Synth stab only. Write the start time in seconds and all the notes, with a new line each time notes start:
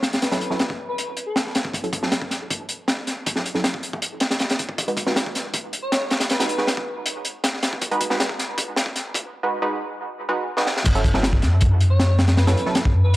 0.32 F#3 C#4 E4 A4
0.50 F#3 C#4 E4 A4
1.84 F#3 C#4 E4 A4
2.03 F#3 C#4 E4 A4
3.36 F#3 C#4 E4 A4
3.55 F#3 C#4 E4 A4
4.88 G#3 D#4 F#4 B4
5.07 G#3 D#4 F#4 B4
6.40 G#3 D#4 F#4 B4
6.58 G#3 D#4 F#4 B4
7.91 G#3 D#4 F#4 B4
8.10 G#3 D#4 F#4 B4
9.43 G#3 D#4 F#4 B4
9.62 G#3 D#4 F#4 B4
10.29 G#3 D#4 F#4 B4
10.57 G#3 D#4 F#4 B4
10.95 F#3 C#4 E4 A4
11.14 F#3 C#4 E4 A4
12.47 F#3 C#4 E4 A4
12.66 F#3 C#4 E4 A4